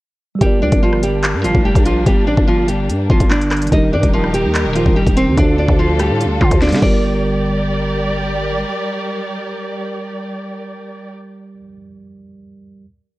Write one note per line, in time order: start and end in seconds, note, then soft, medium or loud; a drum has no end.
0.35 3.65 G3 medium
0.35 3.67 G4 medium
0.41 0.63 G1 loud
0.41 3.69 G3 medium
0.41 0.60 G3 medium
0.41 3.69 A#3 medium
0.41 3.69 D4 medium
0.41 0.60 G4 medium
0.41 3.69 A#4 medium
0.41 kick loud
0.41 closed hi-hat medium
0.46 3.71 D5 medium
0.62 0.71 D2 loud
0.62 0.80 D4 medium
0.62 0.81 D5 medium
0.72 1.35 G1 loud
0.72 kick loud
0.72 closed hi-hat medium
0.82 1.01 F3 medium
0.82 1.01 F4 medium
0.93 cross-stick medium
1.03 1.42 G3 medium
1.03 1.42 G4 medium
1.03 closed hi-hat medium
1.24 clap loud
1.24 closed hi-hat medium
1.34 1.46 G2 loud
1.44 1.54 G1 loud
1.44 1.63 F3 medium
1.44 1.63 F4 medium
1.44 closed hi-hat medium
1.55 1.75 F1 loud
1.55 kick loud
1.65 1.84 G3 medium
1.65 1.84 G4 medium
1.75 2.05 A#1 loud
1.75 kick loud
1.75 closed hi-hat medium
1.86 2.05 F3 medium
1.86 2.04 F4 medium
1.86 closed hi-hat medium
2.06 2.29 G1 loud
2.06 2.25 G3 medium
2.06 2.25 G4 loud
2.06 kick loud
2.06 closed hi-hat medium
2.27 2.37 A1 loud
2.27 2.46 D4 medium
2.27 2.46 D5 medium
2.38 2.91 G1 loud
2.38 kick loud
2.48 2.67 F3 medium
2.48 2.66 F4 loud
2.68 3.08 G3 medium
2.68 3.07 G4 medium
2.68 closed hi-hat medium
2.89 3.09 G2 loud
2.89 closed hi-hat medium
3.10 3.20 G1 loud
3.10 3.29 F3 medium
3.10 3.29 F4 medium
3.10 kick loud
3.20 3.70 G1 loud
3.20 kick loud
3.20 closed hi-hat medium
3.31 3.70 D4 medium
3.31 3.70 D5 medium
3.31 clap loud
3.41 closed hi-hat medium
3.51 cross-stick loud
3.51 clap medium
3.51 closed hi-hat soft
3.51 open hi-hat medium
3.57 closed hi-hat medium
3.62 closed hi-hat medium
3.66 4.70 D#3 medium
3.66 4.72 D#4 medium
3.66 closed hi-hat medium
3.72 3.94 D#1 loud
3.72 5.36 D#3 medium
3.72 3.91 D#4 medium
3.72 5.36 D#4 medium
3.72 5.36 G4 medium
3.72 4.74 G4 medium
3.72 5.36 A#4 medium
3.72 3.91 D#5 medium
3.72 kick loud
3.72 closed hi-hat medium
3.77 4.76 A#4 medium
3.93 4.03 G2 loud
3.93 4.11 D4 medium
3.93 4.12 D5 medium
4.03 4.46 D#1 loud
4.03 kick loud
4.03 closed hi-hat medium
4.13 4.32 F3 medium
4.13 4.32 F4 medium
4.24 cross-stick medium
4.34 4.73 G3 medium
4.34 4.73 G4 medium
4.34 closed hi-hat medium
4.44 4.67 D#2 loud
4.55 clap loud
4.55 closed hi-hat medium
4.65 4.85 D#1 loud
4.73 5.36 D#3 medium
4.73 4.94 F3 medium
4.73 5.37 D#4 soft
4.73 4.94 F4 medium
4.73 5.38 G4 soft
4.73 closed hi-hat medium
4.78 5.39 A#4 medium
4.86 5.06 D#1 loud
4.86 kick loud
4.96 5.15 G3 medium
4.96 5.15 G4 medium
5.07 5.29 D#1 loud
5.07 kick loud
5.07 closed hi-hat medium
5.17 5.35 C4 loud
5.17 5.36 C5 medium
5.17 closed hi-hat medium
5.27 5.37 D#2 loud
5.32 6.77 D3 medium
5.32 6.79 D4 medium
5.38 5.67 D2 loud
5.38 6.81 D3 medium
5.38 6.81 D4 medium
5.38 5.56 D4 medium
5.38 6.81 F4 medium
5.38 6.81 A4 medium
5.38 5.57 D5 medium
5.38 kick loud
5.38 closed hi-hat medium
5.44 6.83 A4 medium
5.58 5.77 D4 medium
5.58 5.77 D5 medium
5.69 6.11 D2 loud
5.69 kick loud
5.79 5.98 F3 medium
5.79 5.98 F4 loud
5.99 6.39 G3 medium
5.99 6.38 G4 medium
5.99 cross-stick medium
5.99 closed hi-hat medium
6.10 6.27 A2 loud
6.21 closed hi-hat medium
6.25 6.40 D2 loud
6.41 6.51 D3 loud
6.41 6.60 F3 medium
6.41 6.59 F4 medium
6.41 kick loud
6.51 6.74 D2 loud
6.51 kick loud
6.51 closed hi-hat medium
6.62 6.81 D4 medium
6.62 6.81 D5 medium
6.62 snare medium
6.69 6.82 D3 loud
6.69 11.53 G3 medium
6.69 snare medium
6.69 closed hi-hat medium
6.76 11.60 G4 medium
6.76 snare medium
6.82 8.65 G1 loud
6.82 11.10 G3 medium
6.82 11.10 G4 medium
6.82 11.10 A#4 medium
6.82 11.68 A#4 medium
6.82 8.23 D5 medium
6.82 11.10 D5 medium
6.82 kick loud
6.82 crash medium
6.94 11.75 D5 medium